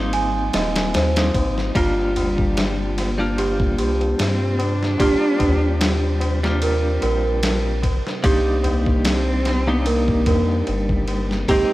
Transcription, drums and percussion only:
0.13 ride medium
0.13 tabla na medium
0.53 snare loud
0.53 ride medium
0.53 tabla na medium
0.76 snare loud
0.76 ride medium
0.76 tabla na soft
0.94 snare loud
0.94 ride medium
0.94 tabla na soft
1.16 snare loud
1.16 ride medium
1.34 kick medium
1.34 ride medium
1.34 tabla na medium
1.58 snare soft
1.58 tabla na soft
1.75 kick loud
1.75 ride medium
1.75 tabla na medium
1.99 tabla na soft
2.16 ride medium
2.16 tabla na loud
2.16 tabla ge medium
2.38 kick medium
2.38 tabla na soft
2.57 snare loud
2.57 ride medium
2.57 tabla na medium
2.80 tabla na soft
2.98 snare soft
2.98 ride medium
2.98 tabla na medium
3.20 tabla na soft
3.38 ride medium
3.38 tabla na medium
3.60 kick loud
3.78 ride medium
3.78 tabla na medium
4.01 ride soft
4.01 tabla na soft
4.18 snare loud
4.18 ride medium
4.18 tabla na medium
4.59 ride medium
4.59 tabla na medium
4.82 snare soft
4.82 tabla na soft
4.98 kick loud
4.98 ride medium
4.98 tabla na medium
5.22 tabla na soft
5.39 kick medium
5.39 ride medium
5.39 tabla na medium
5.39 tabla ge medium
5.62 tabla na soft
5.81 snare loud
5.81 ride medium
5.81 tabla na medium
6.03 tabla na soft
6.20 ride medium
6.20 tabla na medium
6.44 snare medium
6.44 tabla na soft
6.62 ride medium
6.62 tabla na soft
7.02 ride medium
7.02 tabla na loud
7.25 tabla na soft
7.43 snare loud
7.43 ride medium
7.43 tabla na soft
7.82 kick loud
7.82 ride medium
7.82 tabla na medium
8.07 snare soft
8.07 tabla na soft
8.24 kick loud
8.24 ride medium
8.24 tabla na soft
8.46 tabla na soft
8.64 ride medium
8.64 tabla na medium
8.64 tabla ge medium
8.86 kick medium
8.86 tabla na soft
9.05 snare loud
9.05 ride medium
9.05 tabla na medium
9.27 tabla na soft
9.45 snare soft
9.45 ride medium
9.45 tabla na medium
9.68 tabla na soft
9.86 ride medium
9.86 tabla na soft
10.08 kick loud
10.26 kick loud
10.26 ride medium
10.26 tabla na medium
10.48 tabla na soft
10.67 ride medium
10.67 tabla na soft
10.89 kick medium
11.08 ride medium
11.08 tabla na medium
11.30 snare soft
11.30 tabla na soft
11.48 kick loud
11.48 ride medium
11.48 tabla na soft

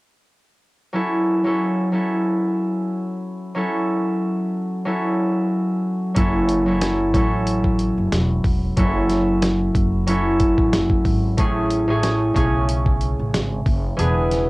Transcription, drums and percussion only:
6.16 kick loud
6.16 closed hi-hat medium
6.49 closed hi-hat medium
6.81 snare loud
6.81 closed hi-hat loud
7.14 kick medium
7.14 closed hi-hat medium
7.47 closed hi-hat loud
7.64 kick medium
7.79 closed hi-hat medium
8.12 snare loud
8.12 closed hi-hat medium
8.44 kick loud
8.44 open hi-hat medium
8.77 kick loud
8.77 closed hi-hat medium
9.10 snare soft
9.10 closed hi-hat medium
9.42 snare loud
9.42 closed hi-hat loud
9.75 kick medium
9.75 closed hi-hat medium
10.08 closed hi-hat loud
10.40 kick medium
10.40 closed hi-hat medium
10.58 kick medium
10.73 snare loud
10.73 closed hi-hat medium
10.90 kick medium
11.05 kick medium
11.05 open hi-hat medium
11.38 kick loud
11.38 closed hi-hat medium
11.70 closed hi-hat medium
12.03 snare loud
12.03 closed hi-hat loud
12.36 kick medium
12.36 closed hi-hat medium
12.69 closed hi-hat loud
12.86 kick medium
13.01 closed hi-hat medium
13.34 snare loud
13.34 closed hi-hat medium
13.66 kick medium
13.66 open hi-hat medium
13.99 closed hi-hat medium
14.31 snare soft
14.31 closed hi-hat medium

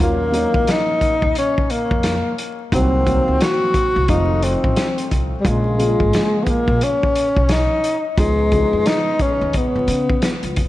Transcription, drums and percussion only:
0.34 closed hi-hat medium
0.54 kick loud
0.67 snare loud
0.67 closed hi-hat medium
1.01 kick medium
1.01 closed hi-hat medium
1.22 kick loud
1.35 closed hi-hat medium
1.58 kick medium
1.70 closed hi-hat medium
1.91 kick medium
2.03 snare loud
2.03 closed hi-hat loud
2.38 closed hi-hat medium
2.72 kick loud
2.72 closed hi-hat medium
3.07 kick medium
3.07 closed hi-hat medium
3.41 snare loud
3.41 closed hi-hat medium
3.74 kick medium
3.74 closed hi-hat medium
4.08 kick medium
4.08 closed hi-hat medium
4.42 closed hi-hat medium
4.64 kick medium
4.76 snare loud
4.76 closed hi-hat loud
4.98 closed hi-hat soft
5.11 kick medium
5.11 closed hi-hat medium
5.45 kick loud
5.45 closed hi-hat medium
5.79 closed hi-hat medium
6.00 kick loud
6.13 snare loud
6.13 closed hi-hat medium
6.46 kick medium
6.46 closed hi-hat medium
6.68 kick medium
6.81 closed hi-hat medium
7.03 kick medium
7.16 closed hi-hat medium
7.37 kick medium
7.49 snare loud
7.49 closed hi-hat medium
7.84 closed hi-hat medium
8.17 kick loud
8.17 closed hi-hat loud
8.52 kick medium
8.52 closed hi-hat medium
8.86 snare loud
8.86 closed hi-hat medium
9.19 kick medium
9.19 closed hi-hat medium
9.53 kick medium
9.53 closed hi-hat medium
9.88 closed hi-hat medium
10.09 kick medium
10.22 snare loud
10.22 closed hi-hat loud
10.43 closed hi-hat soft
10.56 kick medium
10.56 closed hi-hat medium

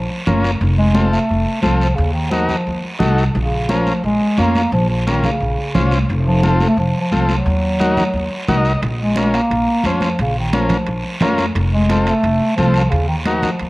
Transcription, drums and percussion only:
0.10 high conga soft
0.27 high conga medium
0.27 low conga medium
0.27 short guiro medium
0.44 high conga medium
0.44 short guiro medium
0.61 high conga soft
0.61 long guiro medium
0.94 high conga medium
0.94 short guiro medium
1.13 short guiro medium
1.29 long guiro medium
1.46 high conga soft
1.63 high conga medium
1.63 short guiro medium
1.81 short guiro medium
1.97 high conga soft
1.97 long guiro medium
2.31 high conga medium
2.31 short guiro medium
2.49 low conga medium
2.49 short guiro medium
2.67 long guiro medium
2.83 high conga soft
3.00 high conga medium
3.00 low conga medium
3.00 short guiro medium
3.18 short guiro medium
3.35 high conga soft
3.35 long guiro medium
3.69 high conga medium
3.69 short guiro medium
3.87 high conga medium
3.87 short guiro medium
4.04 long guiro medium
4.21 high conga soft
4.38 high conga medium
4.38 short guiro medium
4.55 high conga medium
4.55 short guiro medium
4.73 high conga soft
4.73 long guiro medium
5.07 high conga medium
5.07 short guiro medium
5.24 high conga medium
5.24 low conga medium
5.24 short guiro medium
5.41 long guiro medium
5.58 high conga soft
5.75 high conga medium
5.75 low conga medium
5.75 short guiro medium
5.91 high conga medium
5.91 short guiro medium
6.09 high conga soft
6.09 long guiro medium
6.43 high conga medium
6.43 short guiro medium
6.60 high conga medium
6.60 short guiro medium
6.78 long guiro medium
6.95 high conga soft
7.12 high conga medium
7.12 short guiro medium
7.29 high conga medium
7.29 short guiro medium
7.46 high conga soft
7.46 long guiro medium
7.80 high conga medium
7.80 short guiro medium
7.97 high conga medium
7.97 low conga medium
7.97 short guiro medium
8.14 long guiro medium
8.31 high conga soft
8.47 high conga medium
8.47 low conga medium
8.47 short guiro medium
8.65 short guiro medium
8.83 high conga soft
8.83 high timbale medium
8.83 long guiro medium
9.16 high conga medium
9.16 high timbale medium
9.16 short guiro medium
9.34 high timbale medium
9.34 short guiro medium
9.51 high timbale medium
9.51 long guiro medium
9.68 high conga soft
9.84 high conga medium
9.84 high timbale medium
9.84 short guiro medium
10.01 high conga medium
10.01 high timbale medium
10.01 short guiro medium
10.19 high conga soft
10.19 high timbale medium
10.19 long guiro medium
10.53 high conga medium
10.53 high timbale medium
10.53 short guiro medium
10.69 high conga medium
10.69 low conga medium
10.69 high timbale medium
10.69 short guiro medium
10.87 high timbale medium
10.87 long guiro medium
11.04 high conga soft
11.21 high conga medium
11.21 low conga medium
11.21 high timbale medium
11.21 low timbale medium
11.21 short guiro medium
11.38 high conga medium
11.38 high timbale medium
11.38 short guiro medium
11.55 high conga soft
11.55 high timbale medium
11.55 long guiro medium
11.89 high conga medium
11.89 high timbale medium
11.89 short guiro medium
12.07 high timbale medium
12.07 short guiro medium
12.24 high timbale medium
12.24 long guiro medium
12.41 high conga soft
12.58 high conga medium
12.58 high timbale medium
12.58 short guiro medium
12.74 high timbale medium
12.74 short guiro medium
12.92 high conga soft
12.92 high timbale medium
12.92 long guiro medium
13.25 high conga medium
13.25 high timbale medium
13.25 short guiro medium
13.43 high conga medium
13.43 low conga medium
13.43 high timbale medium
13.43 short guiro medium
13.60 high timbale medium
13.60 long guiro medium

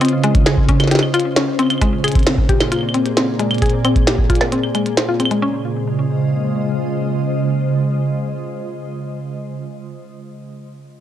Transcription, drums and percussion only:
0.01 closed hi-hat medium
0.05 closed hi-hat medium
0.09 closed hi-hat soft
0.24 closed hi-hat medium
0.35 kick loud
0.35 closed hi-hat medium
0.46 snare loud
0.46 closed hi-hat medium
0.57 kick loud
0.69 kick loud
0.69 closed hi-hat medium
0.80 snare soft
0.80 closed hi-hat medium
0.80 claves medium
0.84 snare soft
0.87 snare soft
0.91 snare soft
0.91 closed hi-hat medium
0.95 snare soft
0.99 snare medium
0.99 claves medium
1.14 closed hi-hat medium
1.14 claves soft
1.20 closed hi-hat medium
1.36 snare loud
1.36 closed hi-hat medium
1.59 closed hi-hat medium
1.59 claves soft
1.63 claves soft
1.67 closed hi-hat medium
1.67 claves soft
1.70 claves medium
1.74 claves soft
1.78 kick medium
1.78 closed hi-hat medium
1.78 claves soft
2.04 closed hi-hat medium
2.04 claves medium
2.08 closed hi-hat medium
2.12 kick loud
2.12 closed hi-hat soft
2.15 closed hi-hat soft
2.19 closed hi-hat soft
2.23 snare loud
2.23 closed hi-hat soft
2.27 closed hi-hat medium
2.38 kick loud
2.49 kick loud
2.49 closed hi-hat medium
2.60 snare medium
2.60 closed hi-hat medium
2.60 claves medium
2.72 closed hi-hat medium
2.72 claves soft
2.74 claves soft
2.76 claves soft
2.79 claves soft
2.81 claves soft
2.89 claves soft
2.94 closed hi-hat medium
3.06 closed hi-hat medium
3.17 snare loud
3.17 closed hi-hat medium
3.39 closed hi-hat medium
3.51 closed hi-hat soft
3.51 claves medium
3.55 closed hi-hat soft
3.58 kick medium
3.58 closed hi-hat soft
3.62 closed hi-hat medium
3.66 closed hi-hat soft
3.70 closed hi-hat soft
3.85 closed hi-hat medium
3.85 claves medium
3.96 kick loud
3.96 closed hi-hat soft
4.07 snare loud
4.07 closed hi-hat medium
4.18 kick loud
4.30 kick loud
4.30 closed hi-hat medium
4.35 closed hi-hat soft
4.41 snare medium
4.41 claves medium
4.52 closed hi-hat medium
4.63 claves soft
4.75 closed hi-hat medium
4.75 claves soft
4.86 closed hi-hat soft
4.97 snare loud
4.97 closed hi-hat medium
5.20 closed hi-hat medium
5.20 claves soft
5.25 claves medium
5.31 closed hi-hat soft

